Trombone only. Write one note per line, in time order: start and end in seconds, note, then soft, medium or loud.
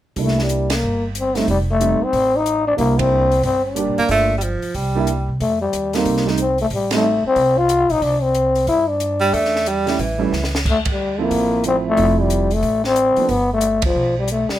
0.21 0.43 A3 medium
0.42 0.76 G3 medium
0.75 1.05 A#3 medium
1.19 1.39 C4 medium
1.38 1.49 A3 medium
1.50 1.59 G3 medium
1.71 2.05 A3 medium
2.03 2.38 C4 medium
2.36 2.67 D#4 medium
2.67 2.73 D4 medium
2.78 3.00 A#3 medium
2.98 3.44 C4 loud
3.45 3.64 C4 medium
3.65 4.59 D4 medium
5.42 5.60 A3 medium
5.61 5.96 G3 medium
5.95 6.27 A#3 medium
6.40 6.59 C4 medium
6.62 6.66 A3 medium
6.74 6.92 G3 medium
6.94 7.23 A3 medium
7.27 7.59 C4 loud
7.58 7.92 F4 loud
7.91 8.04 D#4 medium
8.03 8.24 D4 medium
8.22 8.68 C4 medium
8.68 8.89 E4 medium
8.88 9.87 D4 medium
10.70 10.78 A3 medium
10.92 11.24 G3 medium
11.22 11.66 A#3 loud
11.67 11.76 C4 medium
11.89 12.23 A3 loud
12.21 12.55 G3 medium
12.53 12.85 A3 loud
12.86 13.32 C4 medium
13.31 13.51 B3 medium
13.53 13.83 A3 medium
13.86 14.15 F3 medium
14.19 14.29 G3 medium
14.31 14.53 A3 medium
14.51 14.59 G3 medium